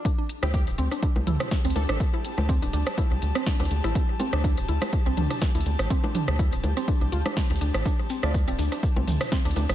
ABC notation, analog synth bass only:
X:1
M:4/4
L:1/16
Q:"Swing 16ths" 1/4=123
K:Cmix
V:1 name="Analog synth bass" clef=bass
z3 D,,2 D,,, D,, z2 C,, D,, z2 D,, D,, A,,, | z3 D,,2 D,,, D,, z2 C,, D,, z2 D,, D,, A,,, | z3 D,,2 D,,, D,, z2 C,, D,, z2 D,, D,, A,,, | z3 D,,2 D,,, D,, z2 C,, D,, z2 D,, D,, A,,, |
z3 D,,2 D,,, D,, z2 C,, D,, z2 D,, D,, A,,, |]